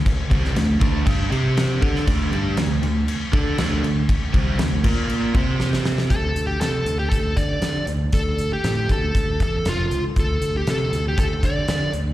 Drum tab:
CC |x-x-x-x-x-x-x-x-|x-x-x-x-x-x-x-x-|x-x-x-x-x-x-----|----------------|
HH |----------------|----------------|----------------|x-x-x-x-x-x-x-x-|
SD |---oo-------o--o|----o-------o---|----o-------oooo|----o-------o---|
BD |o-o---o-o-----o-|o---------o-----|o-o---o---o-----|o-------o-o-----|

CC |----------------|----------------|
HH |x-x-x-x-x-x-x-x-|x-x-x-x-x-x-x-x-|
SD |----o-------o---|----o-------o---|
BD |o-----o-o-o-----|o-------o-o-----|